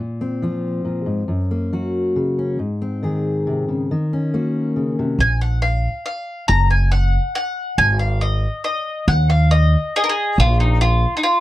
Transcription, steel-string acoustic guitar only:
0.00 0.84 A#2 medium
0.21 1.27 C4 soft
0.42 1.27 F3 soft
0.42 1.30 F4 soft
0.85 1.07 A#2 soft
1.06 1.28 G#2 soft
1.28 2.57 F#2 medium
1.51 2.57 A#3 soft
1.73 2.57 F#3 soft
1.73 2.57 F#4 soft
2.16 2.57 C#3 medium
2.39 2.57 C#4 soft
2.59 3.87 G#2 medium
2.82 3.88 C4 soft
3.03 3.90 D#3 medium
3.03 3.88 G#4 soft
3.47 3.68 C3 medium
3.68 3.90 C#3 soft
3.91 5.21 D#3 medium
4.13 5.18 C#4 medium
4.34 5.18 A#3 medium
4.34 5.18 F#4 soft
4.76 4.98 C#3 medium
4.99 5.21 C3 medium

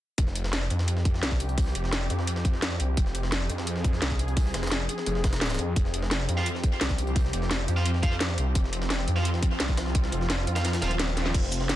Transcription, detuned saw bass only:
0.18 0.69 F1 loud
0.70 1.21 F2 medium
1.23 1.74 C2 medium
1.75 2.09 F1 loud
2.10 2.61 F2 medium
2.62 2.78 F2 medium
2.80 2.96 C2 loud
2.97 3.48 F1 medium
3.50 4.00 F2 loud
4.02 4.53 C2 medium
4.54 4.88 F1 medium
5.07 5.57 F1 medium
5.59 5.75 F2 loud
5.76 6.27 F1 medium
6.29 6.80 F2 medium
6.81 7.32 C2 medium
7.33 7.67 F1 loud
7.68 8.19 F2 medium
8.21 8.37 F2 loud
8.38 8.54 C2 loud
8.55 9.06 F1 loud
9.08 9.59 F2 loud
9.60 10.11 C2 medium
10.12 10.46 F1 loud
10.47 10.81 F2 medium
10.82 11.33 D#1 loud
11.34 11.76 F1 loud

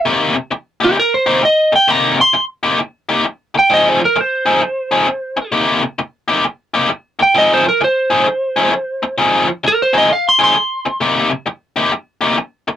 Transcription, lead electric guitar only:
0.85 0.99 G4 medium
0.99 1.13 A#4 medium
1.14 1.43 C5 medium
1.45 1.73 D#5 medium
1.76 1.90 G5 medium
1.90 2.19 A#5 medium
2.21 2.44 C6 medium
3.59 3.72 G5 medium
3.74 3.89 D#5 medium
3.89 4.02 C5 medium
4.05 4.21 A#4 medium
4.21 5.51 C5 loud
7.22 7.36 G5 medium
7.38 7.51 D#5 medium
7.54 7.67 C5 medium
7.69 7.82 A#4 medium
7.84 9.15 C5 medium
9.68 9.82 A#4 medium
9.82 9.95 C5 medium
9.98 10.13 D#5 medium
10.13 10.26 F5 medium
10.29 10.41 C6 medium
10.44 11.30 C6 medium

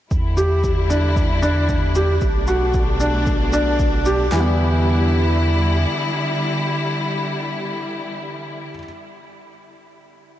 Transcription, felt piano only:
0.37 0.68 G4 medium
0.90 1.20 D4 medium
1.42 1.73 D4 medium
1.96 2.11 G4 medium
2.48 2.78 F#4 medium
3.00 3.31 D4 medium
3.53 3.84 D4 medium
4.06 4.21 G4 medium
4.32 8.70 E3 medium
4.36 8.74 G3 medium
4.36 8.78 B3 medium
4.44 8.82 E4 medium

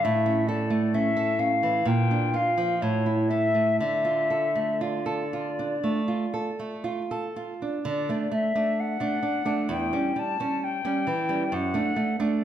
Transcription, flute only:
0.03 0.49 E5 medium
0.47 0.96 D5 medium
0.94 1.41 E5 medium
1.39 1.88 F5 medium
1.87 2.38 G5 medium
2.36 2.83 F5 medium
2.81 3.30 C#5 medium
3.29 3.79 E5 medium
3.80 4.82 E5 medium
4.81 6.86 D5 soft
7.87 8.35 D5 medium
8.34 8.81 E5 medium
8.80 9.74 F#5 medium
9.73 10.20 G5 medium
10.19 10.65 A5 medium
10.64 11.55 G5 medium
11.54 12.16 F#5 medium

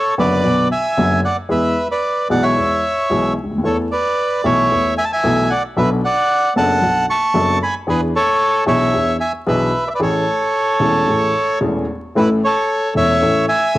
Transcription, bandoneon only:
0.00 0.14 A4 medium
0.00 0.14 C#5 medium
0.19 0.68 B4 medium
0.19 0.68 D5 medium
0.72 1.21 E5 medium
0.72 1.21 G#5 medium
1.25 1.37 D5 medium
1.25 1.37 F#5 medium
1.51 1.88 B4 medium
1.51 1.88 E5 medium
1.91 2.28 B4 soft
1.91 2.28 D5 medium
2.30 2.43 D5 medium
2.30 2.44 F#5 medium
2.43 3.34 C#5 medium
2.43 3.33 E5 medium
3.65 3.78 A4 soft
3.65 3.77 C#5 medium
3.92 4.42 B4 medium
3.92 4.46 D5 medium
4.45 4.94 C#5 medium
4.45 4.94 E5 medium
4.98 5.05 E5 medium
4.98 5.05 G#5 medium
5.04 5.12 A5 medium
5.12 5.49 E5 medium
5.12 5.52 G#5 medium
5.50 5.63 D5 medium
5.50 5.62 F#5 medium
5.77 5.90 B4 medium
5.77 5.89 E5 medium
6.05 6.54 D5 medium
6.05 6.53 F#5 medium
6.57 7.06 F#5 medium
6.57 7.06 A5 medium
7.10 7.59 A5 medium
7.10 7.58 C#6 medium
7.63 7.75 G#5 medium
7.63 7.74 B5 medium
7.89 8.01 G#4 medium
7.89 8.01 B4 medium
8.16 8.64 A4 medium
8.16 8.64 C#5 medium
8.68 9.17 C#5 medium
8.68 9.17 E5 medium
9.20 9.32 E5 medium
9.20 9.32 G#5 medium
9.48 9.84 B4 medium
9.48 9.88 E5 medium
9.90 9.93 E5 medium
9.95 10.00 B4 soft
9.95 10.01 D5 medium
10.02 11.59 A4 soft
10.02 11.59 C#5 medium
12.17 12.30 E4 medium
12.17 12.29 B4 medium
12.45 12.94 A4 medium
12.45 12.93 C#5 medium
12.97 13.46 C#5 medium
12.97 13.46 E5 loud
13.49 13.78 E5 medium
13.49 13.78 G#5 loud

